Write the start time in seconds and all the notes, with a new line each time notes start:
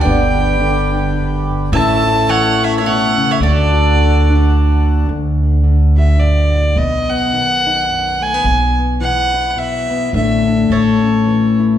0.01 G2 D3 B3 G4 B4 D5 G5
0.05 G1 G3 D4 G4 D5
0.38 G4
0.61 D3
0.94 D4
1.16 F#2
1.50 G2
1.72 A1 A2 E3 A3 C#4 E4 A4 C#5 E5 A5
2.07 E4
2.29 E3 C#5 F#5
2.64 C#4 C#5 E5
2.78 C#5 E5
2.85 B2 C#5 F#5
3.17 C#3
3.31 C#5 E5
3.40 D2 D3 D4 F#4 A4 D5
3.73 F#4
3.96 D3
4.30 D4
5.08 D2
5.43 D4
5.63 D3
5.98 F#4 E5
6.20 G2 D5
6.54 A2
6.76 B1 B2 D#5
7.10 B3 F#5
7.33 D#3
7.67 D#4
7.89 F#2
8.21 A3 G#5
8.34 B3
8.44 B1 B2
8.79 B3
9.01 E3 F#5
9.34 E4
9.50 F#5
9.56 B2 E5
9.91 B3
10.13 A1 A2 D3 A3 D4 E5
10.47 D4
10.70 A1 A2 A4 C#5
11.03 C#4
11.27 E3
11.60 E4